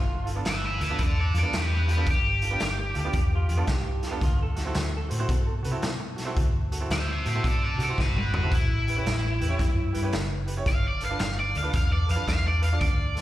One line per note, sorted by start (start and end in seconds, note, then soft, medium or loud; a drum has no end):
0.00 0.41 G1 medium
0.00 0.27 F4 medium
0.25 0.30 F4 medium
0.25 0.31 A4 medium
0.25 closed hi-hat soft
0.35 0.45 B3 medium
0.35 0.45 D4 medium
0.35 0.45 F4 medium
0.35 0.46 A4 medium
0.45 0.78 G1 medium
0.45 0.64 B4 medium
0.45 0.64 E5 medium
0.45 snare loud
0.45 closed hi-hat medium
0.65 0.81 B4 medium
0.65 0.82 E5 medium
0.78 0.97 D2 medium
0.78 0.84 F4 soft
0.78 0.85 A4 soft
0.78 closed hi-hat medium
0.83 1.02 B4 medium
0.83 1.02 E5 medium
0.90 0.99 B3 medium
0.90 0.99 D4 medium
0.90 0.99 F4 medium
0.90 1.00 A4 medium
0.98 1.31 E2 medium
0.98 1.18 A4 medium
0.98 kick loud
0.98 closed hi-hat medium
1.02 1.18 D5 medium
1.20 1.35 A4 medium
1.20 1.36 D5 medium
1.34 1.51 F2 medium
1.34 1.39 F4 soft
1.34 1.40 A4 soft
1.34 closed hi-hat medium
1.38 1.53 A4 medium
1.38 1.54 D5 medium
1.43 1.52 B3 medium
1.43 1.52 D4 medium
1.43 1.53 F4 medium
1.43 1.53 A4 medium
1.53 2.03 E2 medium
1.53 snare loud
1.53 closed hi-hat medium
1.57 1.72 G4 medium
1.57 1.73 B4 medium
1.75 1.90 G4 medium
1.75 1.91 B4 medium
1.88 1.92 F4 soft
1.88 1.93 G4 soft
1.88 closed hi-hat medium
1.92 2.07 G4 medium
1.92 2.08 B4 medium
1.97 2.06 B3 medium
1.97 2.06 D4 medium
1.97 2.07 F4 medium
1.97 2.07 A4 medium
2.06 2.56 G1 medium
2.06 kick loud
2.06 closed hi-hat medium
2.11 3.66 G4 medium
2.42 2.47 F4 soft
2.42 2.48 A4 soft
2.42 closed hi-hat medium
2.51 2.60 B3 medium
2.51 2.60 D4 medium
2.51 2.60 F4 medium
2.51 2.61 G4 medium
2.60 2.93 G1 medium
2.60 snare loud
2.60 closed hi-hat medium
2.94 3.12 D2 medium
2.94 3.00 F4 soft
2.94 3.00 A4 medium
2.94 closed hi-hat medium
2.99 3.32 G4 medium
3.05 3.14 B3 medium
3.05 3.14 D4 medium
3.05 3.15 F4 medium
3.05 3.15 G4 medium
3.13 3.46 E2 medium
3.13 kick loud
3.13 closed hi-hat medium
3.35 3.69 F4 medium
3.48 3.67 F2 medium
3.48 3.54 F4 soft
3.48 3.54 G4 medium
3.48 closed hi-hat medium
3.57 3.67 B3 medium
3.57 3.67 D4 medium
3.57 3.68 F4 medium
3.57 3.68 A4 medium
3.67 4.18 C2 medium
3.67 4.04 G4 medium
3.67 kick medium
3.67 snare loud
3.67 closed hi-hat medium
4.03 4.08 F4 soft
4.03 4.08 A4 medium
4.03 snare soft
4.03 closed hi-hat medium
4.07 4.21 B3 medium
4.07 4.23 G4 medium
4.12 4.21 D4 medium
4.12 4.21 F4 medium
4.12 4.21 A4 medium
4.21 4.71 D2 loud
4.21 4.40 F4 medium
4.21 kick loud
4.21 snare soft
4.21 closed hi-hat medium
4.43 4.93 A4 medium
4.56 4.61 F#4 soft
4.56 4.62 A4 medium
4.56 snare soft
4.56 closed hi-hat soft
4.65 4.75 C4 medium
4.65 4.76 E4 medium
4.65 4.76 F#4 medium
4.65 4.76 A4 medium
4.75 5.08 D2 medium
4.75 snare loud
4.75 closed hi-hat medium
4.97 6.00 A4 medium
5.09 5.28 A2 loud
5.09 5.14 F#4 soft
5.09 5.15 C5 medium
5.09 closed hi-hat medium
5.19 5.29 C4 medium
5.19 5.29 E4 medium
5.19 5.29 F#4 medium
5.19 5.29 C5 medium
5.29 5.61 B2 medium
5.29 kick loud
5.29 closed hi-hat medium
5.63 5.82 C3 medium
5.63 5.68 F#4 soft
5.63 5.69 B4 medium
5.63 closed hi-hat medium
5.71 5.82 C4 medium
5.71 5.82 E4 medium
5.71 5.82 F#4 medium
5.71 5.82 A4 medium
5.82 6.33 B2 medium
5.82 snare loud
5.82 closed hi-hat medium
6.16 6.22 F#4 soft
6.16 6.23 A4 medium
6.16 snare soft
6.16 closed hi-hat medium
6.25 6.36 C4 medium
6.25 6.36 E4 medium
6.25 6.36 F#4 medium
6.25 6.37 A4 medium
6.37 6.87 D2 loud
6.37 kick loud
6.37 closed hi-hat medium
6.72 6.77 F#4 medium
6.72 6.77 A4 medium
6.72 closed hi-hat medium
6.80 6.90 C4 medium
6.80 6.90 E4 medium
6.80 6.91 F#4 medium
6.80 6.91 A4 medium
6.90 7.23 D2 medium
6.90 7.10 C5 medium
6.90 7.09 E5 medium
6.90 snare loud
6.90 closed hi-hat medium
7.11 7.27 C5 medium
7.11 7.27 E5 medium
7.25 7.43 A2 medium
7.25 7.30 F#4 soft
7.25 7.31 A4 soft
7.25 7.47 C5 medium
7.25 7.48 E5 medium
7.25 closed hi-hat medium
7.35 7.44 C4 medium
7.35 7.44 E4 medium
7.35 7.44 F#4 medium
7.35 7.45 A4 medium
7.44 7.77 B2 medium
7.44 7.63 A4 medium
7.44 7.63 D5 medium
7.44 kick loud
7.44 closed hi-hat medium
7.64 7.80 A4 medium
7.64 7.81 D5 medium
7.78 7.96 C3 medium
7.78 7.83 F#4 soft
7.78 7.85 A4 soft
7.78 closed hi-hat medium
7.83 7.98 A4 medium
7.83 7.99 D5 medium
7.89 7.98 C4 medium
7.89 7.98 E4 medium
7.89 7.99 F#4 medium
7.89 7.99 C5 medium
7.98 8.48 G1 medium
7.98 8.16 F#4 medium
7.98 8.17 B4 medium
7.98 kick medium
7.98 snare medium
8.17 8.33 F#4 medium
8.17 8.34 B4 medium
8.17 mid tom medium
8.34 8.38 F#4 soft
8.34 8.51 F#4 medium
8.34 8.39 A4 soft
8.34 8.52 B4 medium
8.34 floor tom loud
8.43 8.52 C4 medium
8.43 8.52 E4 medium
8.43 8.52 F#4 medium
8.43 8.53 A4 medium
8.51 9.02 A1 medium
8.51 10.10 E4 medium
8.51 kick loud
8.51 snare soft
8.51 closed hi-hat medium
8.87 8.92 G4 soft
8.87 8.93 B4 soft
8.87 closed hi-hat medium
8.96 9.06 C#4 medium
8.96 9.06 E4 medium
8.96 9.06 G4 medium
8.96 9.07 B4 medium
9.06 9.38 A1 medium
9.06 snare loud
9.06 closed hi-hat medium
9.41 9.58 E2 medium
9.41 9.45 G4 soft
9.41 9.46 B4 medium
9.41 closed hi-hat medium
9.49 9.59 C#4 medium
9.49 9.59 E4 medium
9.49 9.60 G4 medium
9.49 9.60 C#5 medium
9.59 9.92 F#2 medium
9.59 kick loud
9.59 snare soft
9.59 closed hi-hat medium
9.93 10.12 G2 medium
9.93 9.98 G4 soft
9.93 9.99 B4 medium
9.93 closed hi-hat medium
10.03 10.13 C#4 medium
10.03 10.13 E4 medium
10.03 10.13 G4 medium
10.03 10.14 B4 medium
10.13 10.63 F#1 medium
10.13 snare loud
10.13 closed hi-hat medium
10.46 10.52 G4 soft
10.46 10.53 B4 soft
10.46 closed hi-hat medium
10.57 10.67 C#4 medium
10.57 10.67 E4 medium
10.57 10.67 G4 medium
10.57 10.67 C#5 medium
10.66 11.16 G1 medium
10.66 10.85 F5 loud
10.66 kick loud
10.66 snare soft
10.66 closed hi-hat medium
10.88 11.04 D5 medium
11.01 11.06 A4 soft
11.01 11.07 B4 soft
11.01 closed hi-hat medium
11.05 11.20 F5 medium
11.10 11.20 D4 medium
11.10 11.20 F4 medium
11.10 11.20 A4 medium
11.10 11.21 B4 medium
11.19 11.53 G1 medium
11.19 11.38 F5 medium
11.19 snare loud
11.19 closed hi-hat medium
11.40 11.56 D5 medium
11.55 11.73 D2 medium
11.55 11.60 A4 soft
11.55 11.61 D5 soft
11.55 11.75 F5 medium
11.55 closed hi-hat medium
11.63 11.73 D4 medium
11.63 11.73 F4 medium
11.63 11.74 A4 medium
11.63 11.74 B4 medium
11.73 12.06 E2 medium
11.73 11.92 F5 medium
11.73 kick loud
11.73 snare soft
11.73 closed hi-hat medium
11.93 12.10 D5 medium
12.06 12.27 F2 medium
12.06 12.13 A4 soft
12.06 12.14 B4 soft
12.06 closed hi-hat medium
12.11 12.26 D4 medium
12.11 12.26 F4 medium
12.11 12.28 F5 medium
12.16 12.27 A4 medium
12.16 12.27 B4 medium
12.27 12.78 E2 medium
12.27 12.46 F5 medium
12.27 kick medium
12.27 snare loud
12.27 closed hi-hat medium
12.48 12.64 D5 medium
12.61 12.67 A4 soft
12.61 12.67 B4 soft
12.61 12.81 F5 medium
12.61 closed hi-hat medium
12.73 12.82 D4 medium
12.73 12.82 F4 medium
12.73 12.82 A4 medium
12.73 12.82 D5 medium
12.81 13.21 D2 medium
12.81 13.21 D5 medium
12.81 kick loud
12.81 closed hi-hat medium
13.15 13.21 A4 soft
13.15 13.21 C5 soft
13.15 snare soft
13.15 closed hi-hat medium